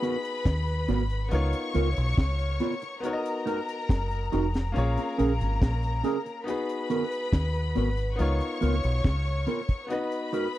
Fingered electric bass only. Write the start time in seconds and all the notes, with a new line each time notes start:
0.46 D#2
0.89 G#1
1.32 C#2
1.75 C#2
1.98 B1
2.18 C#2
3.90 F#1
4.34 F1
4.77 A#1
5.20 A#1
5.41 G#1
5.62 A#1
7.33 D#2
7.77 G#1
8.20 C#2
8.63 C#2
8.85 B1
9.05 C#2